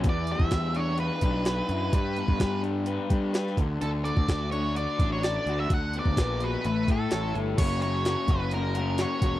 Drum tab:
CC |----------------|----------------|----------------|----------------|
HH |x-x-x-x-x-x-x-x-|x-x-x-x-x-x-x-x-|x-x-x-x-x-x-x-x-|x-x-x-x-x-x-x-x-|
SD |----o-------o---|----o-------oo--|----o-------o---|----o-------o---|
BD |o--oo-----o-----|o--oo-----o---o-|---oo-----o-----|o--oo-----o-----|

CC |x---------------|
HH |x-x-x-x-x-x-x-x-|
SD |----o-------o---|
BD |o-----o-------o-|